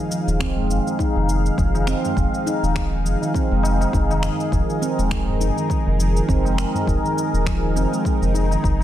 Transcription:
0.00 8.84 D#4 medium
0.00 8.84 G#4 medium
0.00 4.51 F5 medium
0.10 0.27 F3 medium
0.10 tabla na soft
0.10 cabasa medium
0.27 0.71 D#1 medium
0.27 0.40 D#3 medium
0.27 cabasa soft
0.40 0.56 C4 medium
0.40 finger snap medium
0.40 kick loud
0.40 cabasa soft
0.57 0.69 G#3 medium
0.57 tabla ge medium
0.70 0.80 F1 medium
0.70 cabasa medium
0.86 tabla tin medium
0.86 cabasa soft
0.99 1.15 D#4 medium
0.99 kick medium
0.99 cabasa soft
1.15 1.50 F1 medium
1.15 1.57 D#3 medium
1.15 tabla tin medium
1.29 cabasa medium
1.46 cabasa soft
1.58 1.94 F1 medium
1.58 1.74 F3 medium
1.58 kick loud
1.58 cabasa soft
1.75 1.87 D#3 medium
1.75 tabla na medium
1.75 cabasa soft
1.87 2.03 C4 loud
1.87 finger snap medium
1.87 cabasa medium
2.04 2.16 G#3 medium
2.04 tabla ge medium
2.04 cabasa soft
2.17 2.27 F1 loud
2.17 kick loud
2.17 cabasa soft
2.34 cabasa soft
2.46 2.62 D#4 loud
2.46 tabla na soft
2.46 cabasa medium
2.63 3.07 D#1 medium
2.63 3.04 D#3 medium
2.63 cabasa soft
2.76 finger snap medium
2.76 kick loud
2.76 cabasa soft
3.05 3.15 F1 medium
3.05 3.21 F3 medium
3.05 cabasa medium
3.22 3.34 D#3 medium
3.22 tabla tin medium
3.22 cabasa soft
3.34 3.50 C4 loud
3.34 kick loud
3.34 cabasa soft
3.51 3.85 F1 loud
3.51 3.63 G#3 medium
3.51 tabla tin medium
3.63 tabla na medium
3.63 cabasa medium
3.80 tabla na medium
3.80 tabla tin soft
3.80 cabasa soft
3.93 4.29 F1 medium
3.93 4.09 D#4 loud
3.93 kick loud
3.93 cabasa soft
4.10 4.51 D#3 medium
4.10 tabla na medium
4.10 cabasa soft
4.22 finger snap medium
4.22 tabla ge medium
4.22 cabasa medium
4.40 cabasa soft
4.52 4.62 F1 loud
4.52 4.68 F3 medium
4.52 8.84 A#4 medium
4.52 kick loud
4.52 cabasa soft
4.69 4.81 D#3 medium
4.69 cabasa soft
4.82 4.97 C4 medium
4.82 tabla na soft
4.82 cabasa medium
4.98 5.42 D#1 medium
4.98 5.11 G#3 medium
4.98 cabasa soft
5.11 finger snap medium
5.11 kick loud
5.11 cabasa soft
5.28 tabla ge medium
5.40 5.51 F1 medium
5.40 5.56 D#4 medium
5.40 cabasa medium
5.57 5.98 D#3 medium
5.57 tabla tin medium
5.57 cabasa soft
5.70 kick loud
5.70 cabasa soft
5.87 6.21 F1 loud
5.87 tabla tin medium
5.99 6.15 F3 medium
5.99 cabasa medium
6.16 6.28 D#3 medium
6.16 cabasa soft
6.29 6.64 F1 medium
6.29 6.44 C4 loud
6.29 kick loud
6.29 cabasa soft
6.45 6.57 G#3 medium
6.45 tabla na medium
6.45 cabasa soft
6.58 finger snap medium
6.58 cabasa medium
6.74 tabla ge medium
6.74 cabasa soft
6.87 6.98 F1 medium
6.87 7.03 D#4 medium
6.87 kick loud
6.87 cabasa soft
7.04 7.45 D#3 medium
7.04 cabasa soft
7.17 tabla na soft
7.17 cabasa medium
7.33 7.77 D#1 medium
7.33 cabasa soft
7.46 7.62 F3 medium
7.46 finger snap medium
7.46 kick loud
7.46 cabasa soft
7.63 7.75 D#3 medium
7.76 7.86 F1 medium
7.76 7.91 C4 medium
7.76 tabla na medium
7.76 cabasa medium
7.92 8.04 G#3 medium
7.92 tabla tin soft
7.92 cabasa soft
8.05 kick loud
8.05 cabasa soft
8.22 8.56 F1 medium
8.22 tabla tin medium
8.22 cabasa soft
8.35 8.50 D#4 medium
8.35 tabla na medium
8.35 cabasa medium
8.51 8.84 D#3 medium
8.51 tabla na medium
8.51 tabla tin soft
8.51 cabasa soft
8.64 8.84 F1 medium
8.64 kick loud
8.64 cabasa soft
8.80 tabla na medium

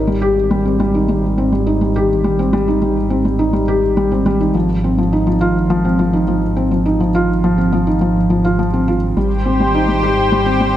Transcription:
0.00 4.52 G#1 medium
0.07 0.16 G3 medium
0.22 0.36 G4 medium
0.51 0.64 G3 medium
0.65 0.79 C4 medium
0.80 0.93 G3 medium
0.95 1.03 D#4 medium
1.09 1.22 G3 medium
1.38 1.51 C4 medium
1.52 1.66 G3 medium
1.67 1.80 D#4 medium
1.81 1.89 G3 medium
1.96 2.09 G4 medium
2.24 2.38 G3 medium
2.39 2.52 C4 medium
2.53 2.67 G3 medium
2.68 2.76 D#4 medium
2.82 2.95 G3 medium
3.10 3.24 C4 medium
3.25 3.39 G3 medium
3.39 3.53 D#4 medium
3.53 3.62 G3 medium
3.68 3.82 G4 medium
3.97 4.11 G3 medium
4.12 4.25 C4 medium
4.26 4.40 G3 loud
4.40 4.49 D#4 medium
4.54 9.13 G#1 medium
4.54 4.68 F3 medium
4.84 4.98 C4 medium
4.98 5.12 F3 medium
5.13 5.26 D#4 medium
5.27 5.35 F3 medium
5.41 5.55 F4 medium
5.70 5.84 F3 loud
5.85 5.98 C4 medium
5.99 6.13 F3 medium
6.13 6.22 D#4 medium
6.28 6.41 F3 medium
6.56 6.70 C4 medium
6.71 6.85 F3 medium
6.86 6.99 D#4 medium
7.00 7.08 F3 medium
7.15 7.28 F4 medium
7.44 7.57 F3 loud
7.58 7.71 C4 medium
7.72 7.86 F3 medium
7.87 7.95 D#4 medium
8.01 8.15 F3 medium
8.30 8.44 F3 medium
8.44 8.58 F4 medium
8.59 8.67 F3 medium
8.73 8.87 C4 medium
8.88 8.96 F4 medium
9.16 10.77 G#1 medium
9.16 9.30 G3 medium
9.16 10.77 G4 medium
9.16 10.77 C5 medium
9.46 9.59 C4 medium
9.60 9.74 G3 medium
9.75 9.88 D#4 medium
9.88 9.97 G3 medium
10.03 10.17 G4 loud
10.32 10.46 G3 medium
10.46 10.60 C4 medium
10.61 10.74 G3 medium

